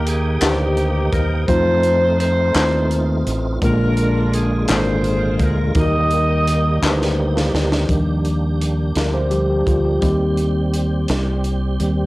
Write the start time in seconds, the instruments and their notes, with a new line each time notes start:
Already playing: fingered electric bass D#2, tine electric piano D#3 D#4 G4 A#4, tonewheel organ A#3 D#4 G5, saxophone section D#4 G4
0.06 saxophone section G#4, closed hi-hat
0.41 fingered electric bass D2, saxophone section A#3 D#4 G4, tine electric piano D#4 G4 B4, snare, clap, closed hi-hat
0.49 tine electric piano C5
0.77 closed hi-hat
1.11 fingered electric bass D#2, saxophone section A#4, kick, closed hi-hat
1.47 fingered electric bass F2, tine electric piano A3 C4 D#4 F4 C5, tonewheel organ A3 C4 F4, saxophone section D#4 A4 C5, kick, closed hi-hat
1.83 closed hi-hat
2.19 saxophone section D#4 A4 C5, closed hi-hat
2.55 fingered electric bass D#2, tine electric piano A3 C4 D#4 F4 B4, snare, clap, closed hi-hat
2.63 tine electric piano C5
2.91 closed hi-hat
3.27 fingered electric bass A1, closed hi-hat
3.62 fingered electric bass A#1, tine electric piano A#2 G#3 A#3 D4 F4 A#4, tonewheel organ D3 G#3 A#3 F4, saxophone section D4 F4 A#4, kick, closed hi-hat
3.97 closed hi-hat
4.33 saxophone section G#4, closed hi-hat
4.68 fingered electric bass G#1, tine electric piano G#3 A#3 D4 F4 A4, snare, clap, closed hi-hat
4.72 saxophone section F4 G#4 C5
4.77 tine electric piano A#4
5.04 closed hi-hat
5.39 fingered electric bass D2, saxophone section A#4, kick, closed hi-hat
5.75 fingered electric bass D#2, tine electric piano D#3 D#4 F#4 A#4, tonewheel organ G3 D#4 G4, kick, closed hi-hat
5.80 saxophone section G4 A#4 D#5, tine electric piano G4
6.11 closed hi-hat
6.48 closed hi-hat
6.83 fingered electric bass D2, tine electric piano D#4 G4 B4, snare, clap
6.90 tine electric piano C5
7.02 snare
7.37 snare
7.54 fingered electric bass D2, snare
7.72 snare
7.88 fingered electric bass D#2, tine electric piano F3 G3 D4, tonewheel organ A#3 D4 G4, kick, closed hi-hat
8.25 closed hi-hat
8.61 closed hi-hat
8.95 fingered electric bass D2, tine electric piano A#4, snare, closed hi-hat
9.14 tine electric piano C5
9.31 tine electric piano F3 G3 D4 G4, closed hi-hat
9.50 tine electric piano G4
9.67 fingered electric bass D2, tine electric piano F4, kick, closed hi-hat
9.85 tine electric piano G4
10.01 fingered electric bass D#2, tine electric piano G3 A#3 C4 G4, tonewheel organ G3 C4 G4, kick, closed hi-hat
10.37 closed hi-hat
10.74 closed hi-hat
11.08 fingered electric bass C2, snare, closed hi-hat
11.44 closed hi-hat
11.80 fingered electric bass D#2, tine electric piano G3 A#3 C4, closed hi-hat